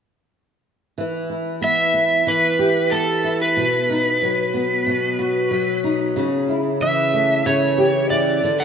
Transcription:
0, 0, Header, 1, 3, 480
1, 0, Start_track
1, 0, Key_signature, 1, "minor"
1, 0, Tempo, 647948
1, 725, Time_signature, 4, 2, 24, 8
1, 6404, End_track
2, 0, Start_track
2, 0, Title_t, "Electric slide guitar"
2, 0, Program_c, 0, 29
2, 1215, Note_on_c, 0, 76, 71
2, 1690, Note_on_c, 0, 71, 65
2, 1704, Note_off_c, 0, 76, 0
2, 2159, Note_on_c, 0, 69, 66
2, 2182, Note_off_c, 0, 71, 0
2, 2508, Note_off_c, 0, 69, 0
2, 2530, Note_on_c, 0, 71, 65
2, 4294, Note_off_c, 0, 71, 0
2, 5056, Note_on_c, 0, 76, 71
2, 5528, Note_on_c, 0, 73, 73
2, 5546, Note_off_c, 0, 76, 0
2, 5978, Note_off_c, 0, 73, 0
2, 6002, Note_on_c, 0, 74, 64
2, 6370, Note_on_c, 0, 78, 72
2, 6388, Note_off_c, 0, 74, 0
2, 6404, Note_off_c, 0, 78, 0
2, 6404, End_track
3, 0, Start_track
3, 0, Title_t, "Nylon-string guitar"
3, 0, Program_c, 1, 24
3, 724, Note_on_c, 1, 52, 65
3, 960, Note_on_c, 1, 64, 41
3, 1195, Note_on_c, 1, 59, 53
3, 1432, Note_off_c, 1, 59, 0
3, 1435, Note_on_c, 1, 59, 42
3, 1671, Note_off_c, 1, 52, 0
3, 1679, Note_on_c, 1, 52, 55
3, 1919, Note_on_c, 1, 67, 51
3, 2159, Note_off_c, 1, 59, 0
3, 2162, Note_on_c, 1, 59, 50
3, 2393, Note_off_c, 1, 64, 0
3, 2402, Note_on_c, 1, 64, 47
3, 2641, Note_on_c, 1, 47, 60
3, 2695, Note_off_c, 1, 67, 0
3, 2696, Note_off_c, 1, 52, 0
3, 2697, Note_off_c, 1, 64, 0
3, 2887, Note_on_c, 1, 63, 47
3, 3125, Note_on_c, 1, 54, 45
3, 3359, Note_off_c, 1, 59, 0
3, 3362, Note_on_c, 1, 59, 42
3, 3596, Note_off_c, 1, 47, 0
3, 3605, Note_on_c, 1, 47, 65
3, 3845, Note_on_c, 1, 66, 48
3, 4071, Note_off_c, 1, 54, 0
3, 4080, Note_on_c, 1, 54, 54
3, 4316, Note_off_c, 1, 63, 0
3, 4325, Note_on_c, 1, 63, 49
3, 4562, Note_off_c, 1, 47, 0
3, 4565, Note_on_c, 1, 49, 64
3, 4617, Note_off_c, 1, 54, 0
3, 4618, Note_off_c, 1, 59, 0
3, 4619, Note_off_c, 1, 63, 0
3, 4619, Note_off_c, 1, 66, 0
3, 4804, Note_on_c, 1, 64, 41
3, 5041, Note_on_c, 1, 52, 49
3, 5283, Note_on_c, 1, 57, 45
3, 5516, Note_off_c, 1, 49, 0
3, 5525, Note_on_c, 1, 49, 65
3, 5763, Note_on_c, 1, 67, 46
3, 5994, Note_off_c, 1, 52, 0
3, 6003, Note_on_c, 1, 52, 54
3, 6247, Note_off_c, 1, 49, 0
3, 6250, Note_on_c, 1, 50, 55
3, 6298, Note_off_c, 1, 52, 0
3, 6298, Note_off_c, 1, 67, 0
3, 6299, Note_off_c, 1, 64, 0
3, 6404, Note_off_c, 1, 50, 0
3, 6404, Note_off_c, 1, 57, 0
3, 6404, End_track
0, 0, End_of_file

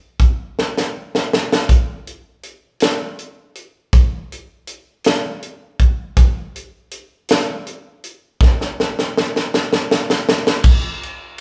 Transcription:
0, 0, Header, 1, 2, 480
1, 0, Start_track
1, 0, Tempo, 746269
1, 1088, Time_signature, 6, 3, 24, 8
1, 7337, End_track
2, 0, Start_track
2, 0, Title_t, "Drums"
2, 126, Note_on_c, 9, 36, 73
2, 128, Note_on_c, 9, 42, 45
2, 191, Note_off_c, 9, 36, 0
2, 192, Note_off_c, 9, 42, 0
2, 377, Note_on_c, 9, 38, 46
2, 442, Note_off_c, 9, 38, 0
2, 498, Note_on_c, 9, 38, 47
2, 563, Note_off_c, 9, 38, 0
2, 739, Note_on_c, 9, 38, 52
2, 803, Note_off_c, 9, 38, 0
2, 858, Note_on_c, 9, 38, 65
2, 922, Note_off_c, 9, 38, 0
2, 981, Note_on_c, 9, 38, 71
2, 1045, Note_off_c, 9, 38, 0
2, 1087, Note_on_c, 9, 42, 76
2, 1088, Note_on_c, 9, 36, 85
2, 1151, Note_off_c, 9, 42, 0
2, 1152, Note_off_c, 9, 36, 0
2, 1332, Note_on_c, 9, 42, 39
2, 1397, Note_off_c, 9, 42, 0
2, 1565, Note_on_c, 9, 42, 45
2, 1629, Note_off_c, 9, 42, 0
2, 1802, Note_on_c, 9, 42, 80
2, 1816, Note_on_c, 9, 38, 79
2, 1866, Note_off_c, 9, 42, 0
2, 1880, Note_off_c, 9, 38, 0
2, 2050, Note_on_c, 9, 42, 40
2, 2114, Note_off_c, 9, 42, 0
2, 2286, Note_on_c, 9, 42, 45
2, 2350, Note_off_c, 9, 42, 0
2, 2527, Note_on_c, 9, 42, 74
2, 2528, Note_on_c, 9, 36, 100
2, 2591, Note_off_c, 9, 42, 0
2, 2592, Note_off_c, 9, 36, 0
2, 2779, Note_on_c, 9, 42, 41
2, 2843, Note_off_c, 9, 42, 0
2, 3005, Note_on_c, 9, 42, 44
2, 3069, Note_off_c, 9, 42, 0
2, 3243, Note_on_c, 9, 42, 68
2, 3257, Note_on_c, 9, 38, 85
2, 3307, Note_off_c, 9, 42, 0
2, 3321, Note_off_c, 9, 38, 0
2, 3489, Note_on_c, 9, 42, 42
2, 3553, Note_off_c, 9, 42, 0
2, 3727, Note_on_c, 9, 42, 43
2, 3728, Note_on_c, 9, 36, 71
2, 3791, Note_off_c, 9, 42, 0
2, 3792, Note_off_c, 9, 36, 0
2, 3967, Note_on_c, 9, 36, 92
2, 3967, Note_on_c, 9, 42, 79
2, 4031, Note_off_c, 9, 42, 0
2, 4032, Note_off_c, 9, 36, 0
2, 4217, Note_on_c, 9, 42, 40
2, 4281, Note_off_c, 9, 42, 0
2, 4447, Note_on_c, 9, 42, 44
2, 4511, Note_off_c, 9, 42, 0
2, 4686, Note_on_c, 9, 42, 76
2, 4701, Note_on_c, 9, 38, 86
2, 4751, Note_off_c, 9, 42, 0
2, 4765, Note_off_c, 9, 38, 0
2, 4931, Note_on_c, 9, 42, 46
2, 4995, Note_off_c, 9, 42, 0
2, 5169, Note_on_c, 9, 42, 42
2, 5233, Note_off_c, 9, 42, 0
2, 5407, Note_on_c, 9, 36, 100
2, 5421, Note_on_c, 9, 38, 47
2, 5471, Note_off_c, 9, 36, 0
2, 5485, Note_off_c, 9, 38, 0
2, 5539, Note_on_c, 9, 38, 36
2, 5604, Note_off_c, 9, 38, 0
2, 5660, Note_on_c, 9, 38, 49
2, 5724, Note_off_c, 9, 38, 0
2, 5781, Note_on_c, 9, 38, 47
2, 5845, Note_off_c, 9, 38, 0
2, 5901, Note_on_c, 9, 38, 62
2, 5966, Note_off_c, 9, 38, 0
2, 6022, Note_on_c, 9, 38, 49
2, 6086, Note_off_c, 9, 38, 0
2, 6137, Note_on_c, 9, 38, 66
2, 6202, Note_off_c, 9, 38, 0
2, 6256, Note_on_c, 9, 38, 63
2, 6320, Note_off_c, 9, 38, 0
2, 6376, Note_on_c, 9, 38, 72
2, 6441, Note_off_c, 9, 38, 0
2, 6496, Note_on_c, 9, 38, 67
2, 6560, Note_off_c, 9, 38, 0
2, 6616, Note_on_c, 9, 38, 83
2, 6681, Note_off_c, 9, 38, 0
2, 6734, Note_on_c, 9, 38, 69
2, 6798, Note_off_c, 9, 38, 0
2, 6841, Note_on_c, 9, 54, 55
2, 6844, Note_on_c, 9, 36, 109
2, 6850, Note_on_c, 9, 49, 92
2, 6905, Note_off_c, 9, 54, 0
2, 6909, Note_off_c, 9, 36, 0
2, 6914, Note_off_c, 9, 49, 0
2, 7096, Note_on_c, 9, 53, 42
2, 7160, Note_off_c, 9, 53, 0
2, 7337, End_track
0, 0, End_of_file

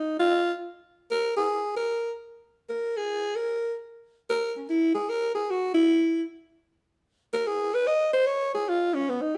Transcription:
0, 0, Header, 1, 2, 480
1, 0, Start_track
1, 0, Tempo, 398936
1, 337, Time_signature, 4, 2, 24, 8
1, 11281, End_track
2, 0, Start_track
2, 0, Title_t, "Alto saxophone"
2, 0, Program_c, 0, 65
2, 0, Note_on_c, 0, 63, 72
2, 196, Note_off_c, 0, 63, 0
2, 230, Note_on_c, 0, 65, 86
2, 650, Note_off_c, 0, 65, 0
2, 1334, Note_on_c, 0, 70, 87
2, 1610, Note_off_c, 0, 70, 0
2, 1644, Note_on_c, 0, 68, 83
2, 2074, Note_off_c, 0, 68, 0
2, 2121, Note_on_c, 0, 70, 83
2, 2552, Note_off_c, 0, 70, 0
2, 3239, Note_on_c, 0, 70, 77
2, 3571, Note_on_c, 0, 68, 90
2, 3589, Note_off_c, 0, 70, 0
2, 4037, Note_on_c, 0, 70, 82
2, 4055, Note_off_c, 0, 68, 0
2, 4502, Note_off_c, 0, 70, 0
2, 5171, Note_on_c, 0, 70, 86
2, 5447, Note_off_c, 0, 70, 0
2, 5502, Note_on_c, 0, 61, 46
2, 5643, Note_on_c, 0, 64, 84
2, 5661, Note_off_c, 0, 61, 0
2, 5944, Note_off_c, 0, 64, 0
2, 5950, Note_on_c, 0, 68, 88
2, 6123, Note_on_c, 0, 70, 104
2, 6141, Note_off_c, 0, 68, 0
2, 6425, Note_off_c, 0, 70, 0
2, 6433, Note_on_c, 0, 68, 79
2, 6621, Note_on_c, 0, 66, 77
2, 6639, Note_off_c, 0, 68, 0
2, 6898, Note_off_c, 0, 66, 0
2, 6905, Note_on_c, 0, 64, 83
2, 7495, Note_off_c, 0, 64, 0
2, 8820, Note_on_c, 0, 70, 85
2, 8986, Note_on_c, 0, 68, 86
2, 9004, Note_off_c, 0, 70, 0
2, 9314, Note_on_c, 0, 71, 91
2, 9333, Note_off_c, 0, 68, 0
2, 9466, Note_on_c, 0, 75, 85
2, 9484, Note_off_c, 0, 71, 0
2, 9778, Note_off_c, 0, 75, 0
2, 9785, Note_on_c, 0, 72, 84
2, 9941, Note_on_c, 0, 73, 95
2, 9959, Note_off_c, 0, 72, 0
2, 10255, Note_off_c, 0, 73, 0
2, 10281, Note_on_c, 0, 68, 80
2, 10452, Note_on_c, 0, 65, 72
2, 10470, Note_off_c, 0, 68, 0
2, 10756, Note_on_c, 0, 61, 78
2, 10774, Note_off_c, 0, 65, 0
2, 10939, Note_on_c, 0, 59, 76
2, 10957, Note_off_c, 0, 61, 0
2, 11087, Note_on_c, 0, 63, 66
2, 11105, Note_off_c, 0, 59, 0
2, 11278, Note_off_c, 0, 63, 0
2, 11281, End_track
0, 0, End_of_file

